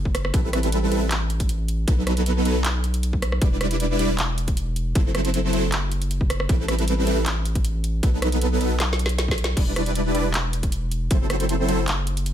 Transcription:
Already playing: F#1
0.05 kick
0.15 cross-stick, closed hi-hat
0.25 cross-stick
0.34 A1 G3 C4 E4 A4 B4, kick, closed hi-hat
0.53 cross-stick, closed hi-hat
0.63 closed hi-hat
0.72 closed hi-hat
0.91 G3 C4 E4 A4 B4, closed hi-hat
1.11 clap, closed hi-hat
1.30 closed hi-hat
1.40 kick, closed hi-hat
1.49 closed hi-hat
1.68 closed hi-hat
1.87 B1 F#3 B3 D#4 A4 B4, kick, closed hi-hat
2.07 cross-stick, closed hi-hat
2.17 closed hi-hat
2.26 closed hi-hat
2.45 F#3 B3 D#4 A4 B4, closed hi-hat
2.65 clap, closed hi-hat
2.84 closed hi-hat
2.94 closed hi-hat
3.03 closed hi-hat
3.13 kick
3.22 cross-stick, closed hi-hat
3.32 cross-stick
3.41 E1 G3 D4 E4 B4 D5, kick, closed hi-hat
3.61 cross-stick, closed hi-hat
3.71 closed hi-hat
3.80 closed hi-hat
3.99 G3 D4 E4 B4 D5, closed hi-hat
4.18 clap, closed hi-hat
4.38 closed hi-hat
4.48 kick, closed hi-hat
4.57 closed hi-hat
4.76 closed hi-hat
4.95 F#1 F#3 C4 E4 A4 C5, kick, closed hi-hat
5.15 cross-stick, closed hi-hat
5.25 closed hi-hat
5.34 closed hi-hat
5.53 F#3 C4 E4 A4 C5, closed hi-hat
5.72 clap, closed hi-hat
5.92 closed hi-hat
6.02 closed hi-hat
6.11 closed hi-hat
6.21 kick
6.30 cross-stick, closed hi-hat
6.40 cross-stick
6.49 A1 G3 C4 E4 A4 B4, kick, closed hi-hat
6.68 cross-stick, closed hi-hat
6.79 closed hi-hat
6.88 closed hi-hat
7.07 G3 C4 E4 A4 B4, closed hi-hat
7.26 clap, closed hi-hat
7.45 closed hi-hat
7.55 kick, closed hi-hat
7.65 closed hi-hat
7.84 closed hi-hat
8.03 B1 F#3 B3 D#4 A4 B4, kick, closed hi-hat
8.22 cross-stick, closed hi-hat
8.32 closed hi-hat
8.41 closed hi-hat
8.61 F#3 B3 D#4 A4 B4, closed hi-hat
8.80 snare, clap, closed hi-hat
8.93 snare
8.99 closed hi-hat
9.06 snare, closed hi-hat
9.18 snare, closed hi-hat
9.28 kick, snare
9.38 closed hi-hat
9.44 snare
9.57 E1 G3 D4 E4 B4 D5, kick, closed hi-hat, crash
9.76 cross-stick, closed hi-hat
9.86 closed hi-hat
9.95 closed hi-hat
10.14 G3 D4 E4 B4 D5, closed hi-hat
10.34 clap, closed hi-hat
10.53 closed hi-hat
10.63 kick, closed hi-hat
10.72 closed hi-hat
10.91 closed hi-hat
11.11 F#1 F#3 C4 E4 A4 C5, kick, closed hi-hat
11.30 cross-stick, closed hi-hat
11.40 closed hi-hat
11.49 closed hi-hat
11.68 F#3 C4 E4 A4 C5, closed hi-hat
11.88 clap, closed hi-hat
12.07 closed hi-hat
12.17 closed hi-hat
12.26 closed hi-hat

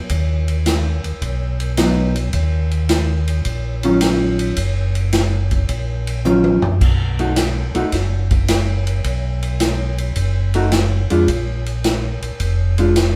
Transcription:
0.10 D#2, kick, ride
0.48 ride
0.66 snare, hi-hat pedal, ride
1.04 D#2, ride
1.22 B1, kick, ride
1.60 ride
1.77 F#3 B3 D#4, snare, hi-hat pedal, ride
2.16 ride
2.33 D#2, kick, ride
2.71 ride
2.89 snare, hi-hat pedal, ride
3.28 ride
3.45 A#1, kick, ride
3.83 D#3 F#3 C#4 F4, ride
4.01 snare, hi-hat pedal, ride
4.39 ride
4.57 F#1, kick, ride
4.95 ride
5.13 snare, hi-hat pedal, ride
5.51 kick, ride
5.69 A#1, kick, ride
6.07 ride
6.25 D#3 F#3 C#4 F4, hi-hat pedal, high tom
6.44 high tom
6.62 A#1, floor tom
6.81 B1, kick, crash
7.19 A3 D#4 F#4, ride
7.36 snare, hi-hat pedal, ride
7.75 B1 A3 D#4 F#4, ride
7.92 F#1, kick, snare, ride
8.31 kick, ride
8.48 snare, hi-hat pedal, ride
8.87 ride
9.04 B1, kick, ride
9.43 ride
9.60 snare, hi-hat pedal, ride
9.98 ride
10.16 F#1, kick, ride
10.54 A3 D#4 F#4, ride
10.72 snare, hi-hat pedal, ride
11.10 F2 G#3 D4 F4, ride
11.28 A#1, kick, ride
11.66 ride
11.84 snare, hi-hat pedal, ride
12.22 A#1, ride
12.40 F1, kick, ride
12.78 G#3 D4 F4, ride
12.96 snare, hi-hat pedal, ride

